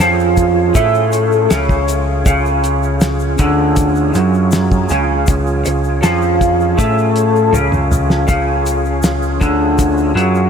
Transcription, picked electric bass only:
0.00 F2
0.75 A2
1.51 C#2
2.26 C#2
3.39 D2
4.15 F#2
4.91 C#2
5.28 C#2
5.67 C#2
6.04 F2
6.79 A2
7.54 C#2
8.29 C#2
9.41 D2
10.15 F#2

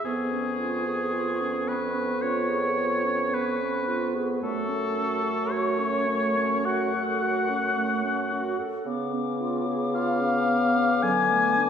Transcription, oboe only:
0.05 G#4
1.68 B4
2.22 C#5
3.34 B4
4.43 A4
5.51 C#5
6.66 F#5
9.95 F5
11.03 G#5

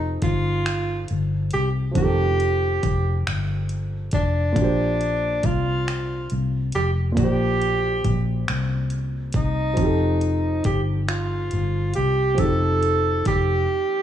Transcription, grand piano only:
Already playing: F3 C4 D#4 G4 A4
1.91 F3 C4
1.97 D#3 G4
2.03 A4
4.52 A#2 A#3
4.58 D4 G4
4.64 C5
7.12 A#2 A#3
7.18 G4 D5
7.24 C5
9.74 F3 C4
9.79 D#4 G4
9.85 A4
12.35 F3 C4
12.40 D#4 G4
12.46 A4

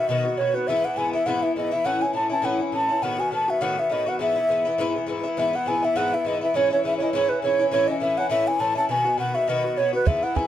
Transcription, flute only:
0.08 D#5
0.38 C#5
0.55 B4
0.67 E5
0.85 F#5
0.94 F#5 G#5
1.14 E5
1.26 F#5
1.42 E5
1.56 D#5
1.73 E5
1.86 F#5
2.02 G#5
2.15 A5
2.31 A5
2.45 F#5
2.74 A5
3.03 F#5
3.20 G#5
3.34 A5
3.50 E5
3.62 F#5
3.79 E5
3.93 D#5
4.09 F#5
4.21 E5
5.38 E5
5.56 F#5
5.68 G#5
5.85 E5
5.97 F#5
6.14 E5
6.27 D#5
6.43 E5
6.56 C#5
6.72 C#5
6.86 E5
6.97 C#5
7.02 D#5
7.13 C#5
7.29 B4
7.43 C#5
7.71 C#5
7.87 D#5
8.00 E5
8.18 F#5
8.30 E5
8.47 G#5
8.60 A5
8.77 A5
8.90 G#5
9.19 F#5
9.35 E5
9.49 D#5
9.78 C#5
9.95 B4
10.07 E5
10.23 F#5
10.36 G#5

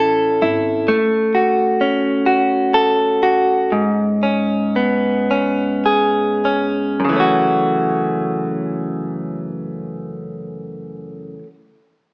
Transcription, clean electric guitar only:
Already playing: C#4 E4 A4
0.42 E4
0.88 A3
1.35 F#4
1.81 C#4
2.26 F#4
2.74 A4
3.23 F#4
3.72 G#2
4.23 C#4
4.76 B3
5.31 C#4
5.86 G#4
6.45 C#4
7.00 F#2
7.05 C#3
7.09 E3 A3
7.16 C#4 F#4

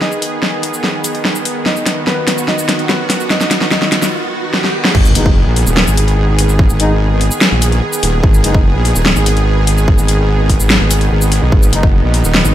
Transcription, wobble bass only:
4.95 G#1
5.15 F#1
5.46 A#1
5.67 D#1
5.87 G#1
6.70 G#1
7.52 A#1
8.03 D#1
8.23 G#1
8.44 F#1
8.75 A#1
8.96 D#1
9.16 G#1
9.98 G#1
10.60 G#1
10.80 G#1
11.11 G#1
11.42 B1
11.52 G#1
11.73 F#1
12.04 A#1
12.24 D#1
12.45 G#1

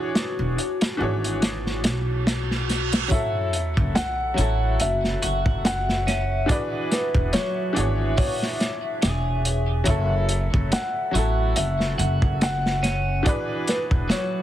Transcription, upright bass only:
0.39 E1
1.01 G#1
1.85 B1
3.78 F#1
4.38 A1
4.81 F#1
5.24 F#1
7.15 E1
7.77 G#1
9.04 E1
9.88 F#1
10.55 F#1
11.15 A1
11.57 F#1
11.99 F#1
13.91 E1

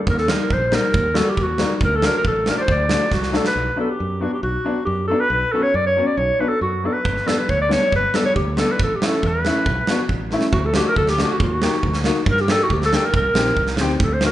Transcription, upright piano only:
0.30 G3 A#3 D#4
0.72 G3 A#3 D#4
1.14 G3 A#3 F#4
1.59 G3 A#3 D#4
2.04 F#3 A3 D4
2.47 F#3 A3 D4
2.91 F#3 A3 D4
3.32 F#3 A3 D4
3.76 F#3 B3 D4
4.20 F#3 B3 D4
4.65 F#3 B3 D4
5.10 F#3 B3 D4
5.54 F#3 B3 C#4
5.96 F#3 B3 C#4
6.39 F#3 B3 D4
6.84 F#3 B3 D4
7.26 G3 B3 D4
7.69 G3 B3 D4
8.14 G3 B3 D4
8.57 G3 B3 D4
9.02 A3 C#4 E4
9.46 A3 C#4 E4
9.89 B3 D4 F#4
10.32 A3 C#4 E4
10.75 A3 D4 F#4
11.20 A3 D4 F#4
11.62 A#3 D#4 G4
12.05 A#3 D#4 F#4
12.49 A#3 D4 G4
12.93 A#3 D4 G4
13.35 C4 D#4 G4
13.80 C4 D#4 G4
14.23 A3 D4 F#4

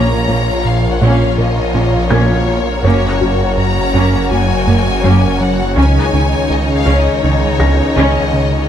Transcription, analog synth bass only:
Already playing: A#2
0.28 A#2
0.65 A#2
1.02 A#2
1.38 A#2
1.75 A#2
2.11 A#2
2.48 A#3
2.85 F#2
3.21 F#2
3.58 F#2
3.94 F#2
4.31 F#2
4.68 F#2
5.04 F#2
5.41 F#3
5.77 C#2
6.13 C#2
6.50 C#2
6.87 C#2
7.24 C#2
7.60 C#2
7.97 C#2
8.33 C#3

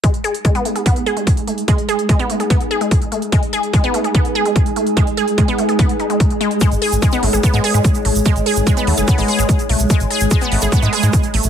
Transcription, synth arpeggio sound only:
0.04 G#3
0.24 G#4
0.45 G#3
0.55 B3
0.65 A3
0.76 G#4
0.86 B3
1.06 G#4
1.17 G#3
1.47 A3
1.68 G#3
1.89 G#4
2.09 G#3
2.19 B3
2.30 A3
2.40 G#4
2.50 B3
2.71 G#4
2.81 G#3
3.12 A3
3.32 G#3
3.53 G#4
3.74 G#3
3.84 B3
3.94 A3
4.04 G#4
4.15 B3
4.35 G#4
4.45 G#3
4.76 A3
4.97 G#3
5.17 G#4
5.38 G#3
5.48 B3
5.58 A3
5.69 G#4
5.79 B3
6.00 D#4
6.10 G#3
6.41 G#3
6.61 G#3
6.82 G#4
7.02 G#3
7.13 B3
7.23 A3
7.33 G#4
7.43 B3
7.54 G#3
7.64 G#4
7.74 G#3
8.05 A3
8.26 G#3
8.46 G#4
8.67 G#3
8.77 B3
8.87 A3
8.97 G#4
9.08 B3
9.18 G#3
9.28 G#4
9.39 G#3
9.69 A3
9.90 G#3
10.11 G#4
10.31 G#3
10.41 B3
10.52 A3
10.62 G#4
10.72 B3
10.82 G#3
10.93 G#4
11.03 G#3
11.34 A3

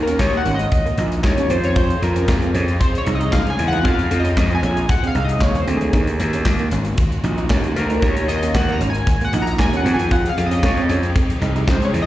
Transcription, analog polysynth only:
0.03 A#4
0.20 C#5
0.37 F#5
0.55 D#5
1.24 C#5
1.51 C5
1.65 C#5
1.77 C5
2.03 A#4
2.80 C5
2.98 C#5
3.15 D#5
3.32 F5
3.50 G#5
3.68 F#5
3.85 F5
4.20 D#5
4.55 G#5
4.90 F#5
5.07 F5
5.24 D#5
5.42 C#5
5.60 C5
5.77 G#4
7.76 A#4
8.03 C#5
8.28 D#5
8.54 F#5
8.72 A#5
8.90 G#5
9.25 F#5
9.42 A#5
9.59 G#5
9.77 F#5
9.94 G#5
10.12 F#5
10.29 F5
10.46 D#5
10.64 C#5
10.82 D#5
11.68 C5
11.85 C#5
12.02 D#5

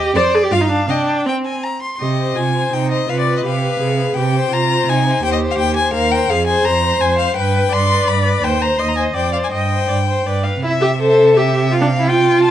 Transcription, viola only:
Already playing: G4
0.16 C5
0.35 G#4
0.43 G4
0.51 F4
0.61 D#4
0.70 D4
0.89 D4
1.26 C4
1.99 G4
2.35 F4
2.72 D#4
3.08 F4
3.44 G4
3.80 G#4
4.16 G4
4.51 F4
4.88 D#4
5.25 G4
5.94 A#4
6.30 G#4
6.65 C5
7.36 B4
7.72 D5
8.44 C5
8.79 D#5
9.14 D5
9.51 D#5
9.88 D5
10.07 C5
10.26 D5
10.43 F5
10.63 E4
10.81 G4
11.01 A4
11.37 G4
11.71 F4
11.81 D4
11.99 E4
12.08 F4

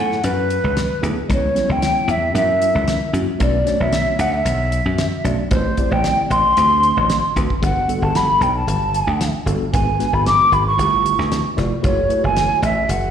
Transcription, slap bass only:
Already playing: A2
0.24 F#2
0.64 C#2
1.03 D2
1.30 C#2
1.69 C#2
2.08 E2
2.34 F#2
2.75 C#2
3.13 F#2
3.40 B1
3.80 B1
4.19 D2
4.45 B1
4.85 F#2
5.24 B1
5.51 A1
5.91 A1
6.30 A1
6.57 D2
6.97 A1
7.36 D2
7.63 G1
8.02 G1
8.41 B1
8.67 G1
9.07 D2
9.46 G1
9.74 G#1
10.13 G#1
10.52 G#1
10.78 G1
11.19 D2
11.58 F1
11.84 F#1
12.24 F#1
12.62 A1
12.88 F#1

